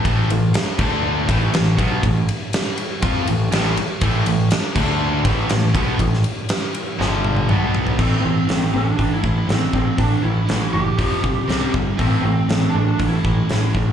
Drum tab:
CC |------x---------|----------------|------x---------|----------------|
RD |x-x-x-----x-x-x-|x-x-x-x-x-x-x-x-|x-x-x-----x-x-x-|x-x-x-x---------|
HH |----------------|----------------|----------------|----------------|
SD |----o-------o---|----o-------o---|----o-------o---|-o--o---o-------|
T1 |----------------|----------------|----------------|----------oo----|
T2 |----------------|----------------|----------------|------------o---|
FT |----------------|----------------|----------------|--------------oo|
BD |o-----o---o---o-|o-------o-------|o-----o---o---o-|o---------------|

CC |x---------------|----------------|----------------|
RD |----------------|----------------|----------------|
HH |----o---o---o---|o---o---o---o---|o---o---o---o---|
SD |----o-------o---|----o-------o---|----o-------o---|
T1 |----------------|----------------|----------------|
T2 |----------------|----------------|----------------|
FT |----------------|----------------|----------------|
BD |o-------o-o---o-|o-------o-o---o-|o-------o-o---o-|